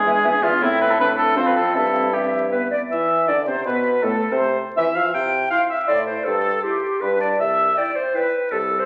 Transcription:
Already playing: G#3 G#4
0.06 E2 D4 E5
0.24 E2 B3 D4 E5
0.43 E2 D4 F4 E5
0.61 A2 C4 E4 E5
0.81 B4
0.91 A4
0.99 D4 B4
1.18 A4
1.36 F2 C4 C5 F5
1.46 B4
1.56 A4
1.74 G2 C4 E4 A4 E5
2.12 C4 G4 E5
2.51 B3 B4
2.70 D5
2.88 E3 E4 E5
3.28 D3 D4 D5
3.47 C3 C4 C5
3.65 B2 B3 B4
4.03 A2 A3 A4
4.31 C3 C4 C5
4.77 E3 E4 E5
4.95 F3 F4 F5
5.14 C3 G5
5.50 E4 F5 C6
5.69 E5
5.87 A2 E4 D5 C6
6.07 C5
6.24 G2 A4
6.63 E4 G4 C6
7.01 G2 D4 B4 B5
7.20 D5 A5
7.40 C2 E5
7.76 E4 D5 G5
7.96 C5
8.14 E4 B4 G5
8.51 C2 A4
8.78 C5

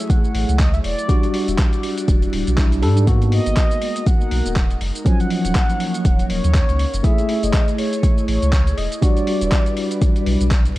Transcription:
Already playing: F#3 A3 E4 G#4 C#5 E5
0.10 F#5, kick, closed hi-hat, cabasa
0.24 cabasa
0.35 A1, open hi-hat
0.49 C#2, closed hi-hat, cabasa
0.59 D#5, kick, clap, closed hi-hat, cabasa
0.73 E5, closed hi-hat, cabasa
0.84 E1 D5, open hi-hat
0.99 closed hi-hat, cabasa
1.08 G3 D4 F#4 D5, kick, closed hi-hat, cabasa
1.23 closed hi-hat, cabasa
1.34 open hi-hat
1.48 E1, closed hi-hat, cabasa
1.59 kick, clap, closed hi-hat, cabasa
1.73 closed hi-hat, cabasa
1.83 open hi-hat
1.98 closed hi-hat, cabasa
2.08 E1, kick, closed hi-hat, cabasa
2.22 closed hi-hat, cabasa
2.33 D1, open hi-hat
2.47 B1, closed hi-hat, cabasa
2.57 G3 D4 E4, kick, clap, closed hi-hat, cabasa
2.72 closed hi-hat, cabasa
2.82 G#2 G3 D4 A4, open hi-hat
2.97 closed hi-hat, cabasa
3.06 G#3 A#3 B3 D#4 F#4 A#4, kick, closed hi-hat, cabasa
3.22 closed hi-hat, cabasa
3.32 D#5, open hi-hat
3.46 G#1, closed hi-hat, cabasa
3.57 kick, clap, closed hi-hat, cabasa
3.71 closed hi-hat, cabasa
3.82 open hi-hat
3.96 closed hi-hat, cabasa
4.06 F#5, kick, closed hi-hat, cabasa
4.21 cabasa
4.31 B1, open hi-hat
4.46 D#1, closed hi-hat, cabasa
4.56 kick, clap, closed hi-hat, cabasa
4.70 closed hi-hat, cabasa
4.81 F#1, open hi-hat
4.95 closed hi-hat, cabasa
5.05 F3 F#3 A#3 C#4 C#5 G#5, kick, closed hi-hat, cabasa
5.20 F#5, closed hi-hat, cabasa
5.30 F#5, open hi-hat
5.45 D#1, closed hi-hat, cabasa
5.55 kick, clap, closed hi-hat, cabasa
5.70 closed hi-hat, cabasa
5.80 open hi-hat
5.94 closed hi-hat, cabasa
6.05 D#1, kick, closed hi-hat, cabasa
6.19 closed hi-hat, cabasa
6.30 D#1 C#5, open hi-hat
6.44 D#2, closed hi-hat, cabasa
6.54 kick, clap, closed hi-hat, cabasa
6.69 C#2, closed hi-hat, cabasa
6.79 open hi-hat
6.94 F#1, closed hi-hat, cabasa
7.03 A3 E4 G#4 C#5 E5, kick, closed hi-hat, cabasa
7.18 closed hi-hat, cabasa
7.29 open hi-hat
7.43 F#1 D#5, closed hi-hat, cabasa
7.54 kick, clap, closed hi-hat, cabasa
7.68 closed hi-hat, cabasa
7.78 C#5, open hi-hat
7.93 closed hi-hat, cabasa
8.03 kick, closed hi-hat, cabasa
8.18 cabasa
8.28 A1 C#5, open hi-hat
8.42 C#2, closed hi-hat, cabasa
8.53 kick, clap, closed hi-hat, cabasa
8.67 closed hi-hat, cabasa
8.78 E1 D#5, open hi-hat
8.92 closed hi-hat, cabasa
9.01 G3 D4 F#4 B4 D5, kick, closed hi-hat, cabasa
9.17 closed hi-hat, cabasa
9.27 open hi-hat
9.41 E1, closed hi-hat, cabasa
9.52 kick, clap, closed hi-hat, cabasa
9.66 closed hi-hat, cabasa
9.77 open hi-hat
9.91 closed hi-hat, cabasa
10.02 kick, closed hi-hat, cabasa
10.16 closed hi-hat, cabasa
10.26 B1, open hi-hat
10.41 B1, closed hi-hat, cabasa
10.51 kick, clap, closed hi-hat, cabasa
10.65 closed hi-hat, cabasa

